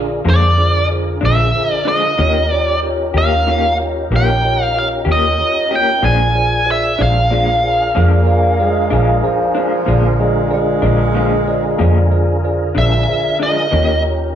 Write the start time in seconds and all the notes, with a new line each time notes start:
Already playing: A#1 D3 D4 F4 G#4 A#4 D5
0.25 F2 A#2 F3 G#3 D4 F4 G#4 C5
0.30 D5
0.58 D4 F4 G#4 C5
0.90 D4 F4 G#4 C5
1.21 A#1 F3 G#3 D4 F4 G#4 C5
1.25 E5
1.56 D4 F4 G#4 C5
1.74 D5
1.85 F3 G#3 D4 F4 G#4 C5 D#5
2.18 D#2 D#3 A#3 C#4 D#4 F4 G4 A#4 C#5
2.49 F4 G4 A#4 C#5 D5
2.83 F4 G4 A#4 C#5
3.14 D#2 A#3 C#4 F4 G4 A#4 C#5 F5
3.47 D#3 A#3 C#4 F4 G4 A#4 C#5
3.80 F4 G4 A#4 C#5
4.11 A#1 D#3 A#3 C#4 F4 G4 A#4 C#5
4.16 G5
4.44 F4 G4 A#4 C#5
4.64 F5
4.76 F4 G4 A#4 C#5 F5
5.05 D#2 A#3 C#4 F4 G4 A#4 C#5
5.12 D#5
5.40 F4 G4 A#4 C#5
5.70 A#3 C#4 F4 G4 A#4 C#5
5.76 G5
6.00 A#1 A#2 F3 G#3 D4 F4 G#4 A#4 C5 D5
6.04 D4 G#5
6.35 F4 G#4 C5 D5
6.66 F4 G#4 C5 D5
6.71 E5
6.98 A#1 F3 G#3 D4 F4 G#4 C5 D5
7.02 F5
7.30 A#2 F3 G#3 D4 F4 G#4 C5 D5
7.64 F4 G#4 C5 D5
7.95 F2 A#2 F3 G#3 A#3 D4 F4 G#4 C5 D5
8.26 F4 G#4 C5 D5
8.60 G#3 F4 G#4 C5 D5
8.90 A#1 F3 G#3 D4 F4 G#4 C5 D5
9.23 F3 F4 G#4 C5 D5
9.55 F3 G#3 D4 F4 G#4 C5 D5
9.85 A#1 A#2 D3 F3 G#3 D4 F4 G#4 A#4 C5 D5
10.20 G#3 F4 G#4 C5 D5
10.51 G#3 F4 G#4 C5 D5
10.82 A#1 F3 G#3 D4 F4 G#4 C5 D5
11.14 A#2 F3 G#3 D4 F4 G#4 C5 F5
11.47 F4 G#4 C5 D5
11.79 F2 A#2 F3 G#3 D4 F4 G#4 C5 D5
12.11 F4 G#4 C5 D5
12.44 F4 G#4 C5 D5
12.75 A#1 F3 G#3 D4 F4 G#4 C5 D5 E5
13.09 F4 G#4 C5 D5
13.39 F3 G#3 D4 F4 G#4 C5 D5 D#5
13.71 D#2 D#3 A#3 C#4 D#4 F4 G4 A#4 C#5
14.06 F4 G4 A#4 C#5